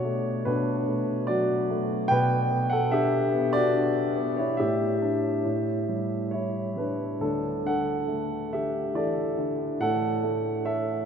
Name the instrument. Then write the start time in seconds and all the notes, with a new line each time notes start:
grand piano
Already playing: B2 F#4 C#5
0.05 A3
0.45 B2 D4 B4
0.88 A3
1.27 F#3 F#4 D5
1.70 A3
2.08 B2 B4 G5
2.50 B3
2.70 A4 F#5
2.91 D4 G4 E5
3.33 B3
3.53 F#4 D5
3.74 D4
4.16 B3
4.37 E4 C#5
4.57 A2 G4 E5
5.02 D4
5.45 A2
5.88 G3
6.31 E4 C#5
6.76 G3 D4 B4
7.20 D2 D4 A4
7.65 D3 A4 F#5
8.08 A3
8.52 D3 G4 E5
8.94 E3 A4 D5
9.38 D3
9.80 A2 A4 F#5
10.23 A3
10.65 A4 C#5 E5